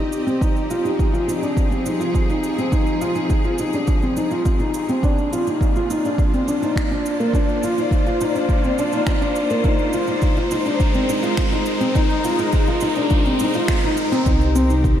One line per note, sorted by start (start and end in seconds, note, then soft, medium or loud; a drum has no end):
0.00 0.39 C2 medium
0.00 6.88 C4 medium
0.00 0.21 D#4 medium
0.00 6.19 G4 medium
0.00 1.57 D5 medium
0.00 1.62 D#5 medium
0.00 riser medium
0.12 shaker medium
0.27 0.39 C4 medium
0.27 shaker soft
0.41 5.00 C2 medium
0.41 5.03 F3 medium
0.41 0.65 D#4 medium
0.41 kick loud
0.41 shaker soft
0.56 shaker soft
0.70 0.82 F4 medium
0.70 shaker medium
0.81 6.59 G#4 medium
0.85 1.08 D#4 medium
0.85 shaker soft
0.99 kick medium
0.99 shaker soft
1.13 1.25 F4 medium
1.13 shaker soft
1.28 1.40 D#4 medium
1.28 shaker medium
1.42 1.66 D4 medium
1.42 shaker soft
1.57 kick loud
1.57 shaker soft
1.71 1.83 C4 medium
1.71 shaker soft
1.86 1.98 D#4 medium
1.86 shaker medium
2.00 2.23 F4 medium
2.00 shaker soft
2.14 kick medium
2.14 shaker soft
2.29 2.53 D#4 medium
2.29 shaker soft
2.43 shaker medium
2.58 2.70 C4 medium
2.58 shaker soft
2.72 2.96 D#4 medium
2.72 kick medium
2.72 shaker soft
2.86 shaker soft
3.01 3.13 F4 medium
3.01 shaker medium
3.15 3.39 D#4 medium
3.15 shaker soft
3.30 kick medium
3.30 shaker soft
3.44 3.56 F4 medium
3.44 shaker soft
3.58 3.71 D#4 medium
3.58 shaker medium
3.73 3.97 D4 medium
3.73 shaker soft
3.87 kick loud
3.87 shaker soft
4.02 4.14 C4 medium
4.02 shaker soft
4.17 4.29 D#4 medium
4.17 shaker medium
4.31 4.55 F4 medium
4.31 shaker soft
4.45 kick loud
4.45 shaker soft
4.59 4.83 D#4 medium
4.59 shaker soft
4.74 shaker medium
4.89 5.01 C4 medium
4.89 shaker soft
5.03 9.62 A#1 medium
5.03 10.80 A#3 medium
5.03 5.27 D4 medium
5.03 kick medium
5.03 shaker soft
5.18 shaker soft
5.33 5.44 F4 medium
5.33 shaker medium
5.47 5.70 D#4 medium
5.47 shaker soft
5.61 10.79 F4 medium
5.61 kick loud
5.61 shaker soft
5.76 5.88 F4 medium
5.76 shaker soft
5.90 6.02 D#4 medium
5.90 shaker medium
5.96 10.80 D5 medium
6.05 6.28 D4 medium
6.05 shaker soft
6.18 kick loud
6.18 shaker soft
6.33 6.45 C4 medium
6.33 15.00 C5 medium
6.33 shaker soft
6.48 6.59 D4 medium
6.48 shaker medium
6.62 6.86 D#4 medium
6.62 shaker soft
6.76 finger snap medium
6.76 kick medium
6.76 shaker soft
6.91 7.14 D4 medium
6.91 shaker soft
7.06 shaker medium
7.20 7.32 A#3 medium
7.20 shaker soft
7.34 7.58 D4 medium
7.34 kick medium
7.34 shaker soft
7.49 shaker soft
7.63 7.75 F4 medium
7.63 shaker medium
7.78 8.01 D#4 medium
7.78 shaker soft
7.91 kick medium
7.91 shaker soft
8.06 8.18 F4 medium
8.06 shaker soft
8.21 8.33 D#4 medium
8.21 shaker medium
8.35 8.58 D4 medium
8.35 shaker soft
8.49 kick medium
8.49 shaker soft
8.64 8.76 C4 medium
8.64 shaker soft
8.78 8.90 D4 medium
8.78 shaker medium
8.92 9.16 D#4 medium
8.92 shaker soft
9.07 finger snap medium
9.07 kick medium
9.07 shaker soft
9.21 9.45 D4 medium
9.21 shaker soft
9.36 shaker medium
9.50 9.62 A#3 medium
9.50 shaker soft
9.64 14.23 G#1 medium
9.64 14.26 G#3 medium
9.64 9.88 D#4 medium
9.64 kick medium
9.64 shaker soft
9.79 shaker soft
9.93 10.06 F4 medium
9.93 shaker medium
10.05 15.00 D#4 medium
10.05 10.31 D#4 medium
10.05 shaker soft
10.22 kick medium
10.22 shaker soft
10.36 10.49 F4 medium
10.36 shaker soft
10.51 10.63 D#4 medium
10.51 shaker medium
10.66 10.89 D4 medium
10.66 shaker soft
10.80 15.00 A#4 medium
10.80 kick loud
10.80 shaker soft
10.94 11.06 C4 medium
10.94 shaker soft
11.09 11.21 D#4 medium
11.09 shaker medium
11.23 11.46 F4 medium
11.23 shaker soft
11.37 finger snap medium
11.37 kick loud
11.37 shaker soft
11.52 11.76 D#4 medium
11.52 shaker soft
11.66 shaker medium
11.81 11.93 C4 medium
11.81 shaker soft
11.95 12.19 D#4 loud
11.95 kick loud
11.95 shaker soft
12.10 shaker soft
12.24 12.36 F4 medium
12.24 shaker medium
12.38 12.62 D#4 medium
12.38 shaker soft
12.52 kick medium
12.52 shaker soft
12.67 12.80 F4 medium
12.67 shaker soft
12.81 12.94 D#4 medium
12.81 shaker medium
12.95 13.20 D4 medium
12.95 shaker soft
13.10 kick loud
13.10 shaker soft
13.25 13.38 C4 medium
13.25 shaker soft
13.39 13.52 D#4 medium
13.39 shaker medium
13.54 13.78 F4 medium
13.54 shaker soft
13.68 finger snap medium
13.68 kick medium
13.68 shaker soft
13.83 14.07 D#4 medium
13.83 shaker soft
13.97 shaker medium
14.12 14.24 C4 medium
14.12 shaker soft
14.26 15.00 C2 medium
14.26 15.00 C4 medium
14.26 14.50 D#4 medium
14.26 kick loud
14.26 shaker soft
14.40 15.00 G4 medium
14.40 shaker soft
14.55 14.67 C4 medium
14.55 shaker medium
14.70 14.93 D#4 medium
14.70 shaker soft
14.84 kick loud
14.84 shaker soft